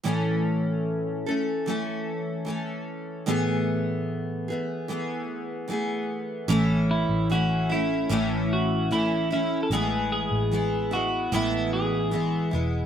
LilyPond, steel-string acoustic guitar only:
\new Staff \with { instrumentName = "Steel-string acoustic guitar" } { \time 4/4 \key a \major \tempo 4 = 75 <a, e a cis' a'>4. <a cis' a'>8 <e a cis' a'>4 <e a cis' a'>4 | <a, e a b gis'>4. <a b gis'>8 <e a b gis'>4 <e a b gis'>4 | <a, e a cis' e'>4 <e a cis' e'>8 <a cis' e'>8 <a, e a cis' e'>4 <e a cis' e'>8 <a cis' e'>8 | <a, e gis b e'>4 <e gis b e'>8 <gis b e'>8 <a, e gis b e'>4 <e gis b e'>8 <gis b e'>8 | }